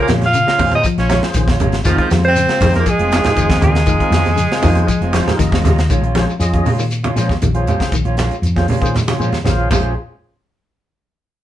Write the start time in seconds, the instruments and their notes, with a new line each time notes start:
0.02 tenor saxophone A#3, alto saxophone A#4
0.08 fingered electric bass A#2, clean electric guitar F3 G#3 C#4 F4, snare, closed hi-hat, high conga, shekere
0.21 snare, closed hi-hat, high conga
0.26 tenor saxophone F4, alto saxophone F5
0.33 clean electric guitar C#3, closed hi-hat, shekere
0.46 clean electric guitar C#4 F4, tonewheel organ G#4 D#5, muted fingered electric bass stroke, snare
0.58 fingered electric bass A#2, clean electric guitar D#3 G#3 C#4 F4, tonewheel organ C#4 F4 G#4 C5, kick, open hi-hat, high conga, low conga, shekere
0.72 tenor saxophone D#4, alto saxophone D#5, closed hi-hat, high conga
0.84 clean electric guitar F3, kick, closed hi-hat, shekere
0.98 fingered electric bass A#1, tenor saxophone C#4, clean electric guitar C#4 F4, alto saxophone C#5, snare, closed hi-hat
1.09 clean electric guitar F3 G#3 C#4 F4, snare, closed hi-hat, high conga, shekere
1.22 tonewheel organ C#4 F4 G#4 C5, muted fingered electric bass stroke, snare
1.34 fingered electric bass A#1, clean electric guitar D#3, kick, snare, closed hi-hat, shekere
1.48 clean electric guitar C#4 F4, kick, snare, high conga
1.60 fingered electric bass G#1, clean electric guitar C#3 G#3 C#4 F4, closed hi-hat, high conga, low conga, shekere
1.72 snare, closed hi-hat
1.84 fingered electric bass F1, clean electric guitar D#3 G#3 C4 F4, tonewheel organ D#4 F4 G#4 C5, alto saxophone F4, kick, snare, closed hi-hat, shekere
1.88 tenor saxophone F3
1.98 tenor saxophone F3, clean electric guitar G#3 C4, alto saxophone F4, kick, closed hi-hat
2.10 fingered electric bass F2, clean electric guitar D#3 F3 G#3 C4 F4, snare, closed hi-hat, high conga, shekere
2.23 alto saxophone C5, closed hi-hat
2.28 tenor saxophone C4
2.36 clean electric guitar C#3, snare, closed hi-hat, shekere
2.46 clean electric guitar G#3 C4 F4, tonewheel organ G#4 C5, muted fingered electric bass stroke, snare, closed hi-hat
2.60 fingered electric bass F2, clean electric guitar D#3 G#3 C4 F4, tonewheel organ D#4 F4 G#4 C5, kick, snare, open hi-hat, high conga, low conga, shekere
2.74 alto saxophone A#4, snare, closed hi-hat, high conga
2.78 tenor saxophone A#3
2.86 clean electric guitar F3, alto saxophone G#4, kick, closed hi-hat, shekere
2.90 tenor saxophone G#3
2.99 fingered electric bass F1, clean electric guitar G#3 C4 F4, closed hi-hat
3.11 clean electric guitar D#3 G#3 C4 F4, muted clean electric guitar stroke, snare, closed hi-hat, high conga, shekere
3.24 tonewheel organ D#4 F4 G#4 C5, muted fingered electric bass stroke, snare, closed hi-hat, low conga
3.36 fingered electric bass F1, clean electric guitar D#3, kick, closed hi-hat, shekere
3.49 clean electric guitar G#3 C4 F4, kick, snare, closed hi-hat, high conga
3.61 fingered electric bass D#2, clean electric guitar C#3 D#3 G#3 C4 F4, alto saxophone G#4, closed hi-hat, high conga, low conga, shekere
3.66 tenor saxophone G#3
3.75 snare
3.86 fingered electric bass F1, clean electric guitar D#3, tonewheel organ D#4 F4 G#4 A#4, kick, closed hi-hat, shekere
4.00 clean electric guitar G#3 C4 F4, kick, closed hi-hat
4.11 fingered electric bass F2, clean electric guitar D#3 F3 G#3 C4 F4, snare, closed hi-hat, high conga, shekere
4.25 snare, closed hi-hat, high conga
4.36 clean electric guitar C#3, snare, closed hi-hat, shekere
4.50 clean electric guitar G#3 C4 F4, tonewheel organ G#4 C5, muted fingered electric bass stroke, snare
4.62 fingered electric bass F2, clean electric guitar D#3 G#3 C4 F4, tonewheel organ D#4 F4 G#4 C5, kick, snare, open hi-hat, high conga, low conga, shekere
4.76 closed hi-hat, high conga
4.87 clean electric guitar F3, kick, closed hi-hat, shekere
5.01 fingered electric bass F1, clean electric guitar G#3 C4 F4, closed hi-hat
5.13 clean electric guitar D#3 F3 G#3 C4 F4, tonewheel organ C5, snare, closed hi-hat, high conga, shekere
5.25 tonewheel organ D#4 F4 G#4 A#4, muted fingered electric bass stroke, snare, low conga
5.39 fingered electric bass F1, clean electric guitar D#3, tonewheel organ D#5, kick, snare, closed hi-hat, shekere
5.52 clean electric guitar G#3 C4 F4, kick, snare, high conga
5.63 fingered electric bass D#2, clean electric guitar C#3 D#3 G#3 F4, snare, closed hi-hat, high conga, low conga, shekere
5.78 snare, closed hi-hat
5.89 fingered electric bass A#1, clean electric guitar D#3 G#3 C#4 F4, kick, closed hi-hat, high conga, shekere
6.01 fingered electric bass A#1, clean electric guitar C#4 F4, closed hi-hat
6.15 clean electric guitar F3 G#3 C#4 F4, tonewheel organ C#4 F4 G#4 C5, snare, closed hi-hat, high conga
6.30 shekere
6.39 fingered electric bass F2, tonewheel organ C#4 F4 G#4 D#5, snare, closed hi-hat, high conga, shekere
6.53 clean electric guitar C#4 F4, kick, closed hi-hat, high conga
6.65 fingered electric bass A#2, clean electric guitar C#3 G#3 C#4 F4, open hi-hat, low conga, shekere
6.79 clean electric guitar D#3, shekere
6.91 closed hi-hat, high conga, shekere
7.03 clean electric guitar C#3 C#4 F4, closed hi-hat, high conga
7.15 fingered electric bass A#2, clean electric guitar F3 G#3 C#4 F4, tonewheel organ C#4 F4 G#4 C5, snare, closed hi-hat, shekere
7.29 kick, snare, high conga, shekere
7.42 fingered electric bass A#1, clean electric guitar D#3, closed hi-hat, high conga, low conga, shekere
7.54 tonewheel organ C#4 F4 G#4 C5, clean electric guitar C#4 F4, closed hi-hat
7.66 clean electric guitar G#3 F4, closed hi-hat, high conga, low conga, shekere
7.80 clean electric guitar C#3, kick, snare, closed hi-hat, shekere
7.92 fingered electric bass A#1, clean electric guitar D#3, kick, closed hi-hat, high conga, shekere
8.05 fingered electric bass A#1, clean electric guitar C#4 F4, closed hi-hat
8.17 clean electric guitar G#3 C#4 F4, muted clean electric guitar stroke, snare, closed hi-hat, high conga
8.31 closed hi-hat, shekere
8.42 fingered electric bass F2, closed hi-hat, high conga, shekere
8.56 tonewheel organ C#4 F4 G#4 C5, clean electric guitar C#4 F4, kick, snare, closed hi-hat, high conga
8.68 fingered electric bass A#2, clean electric guitar C#3 G#3 C#4 F4, open hi-hat, low conga, shekere
8.81 clean electric guitar D#3, tonewheel organ C#4 F4 G#4 C5, kick, closed hi-hat
8.85 shekere
8.95 snare, high conga, low conga, shekere
9.08 clean electric guitar C#3 C#4 F4, snare, high conga
9.18 fingered electric bass A#2, clean electric guitar F3 G#3 C#4 F4, tonewheel organ C#4 F4 G#4 C5, shekere
9.33 snare, high conga, shekere
9.44 fingered electric bass A#1, clean electric guitar D#3, tonewheel organ C#4 F4 G#4 C5 F5, snare, high conga, low conga, shekere
9.58 clean electric guitar C#4 F4
9.69 fingered electric bass A#1, clean electric guitar A#2 G#3 C#4 F4, tonewheel organ C#4 F4 G#4 C5, kick, crash, low conga, shekere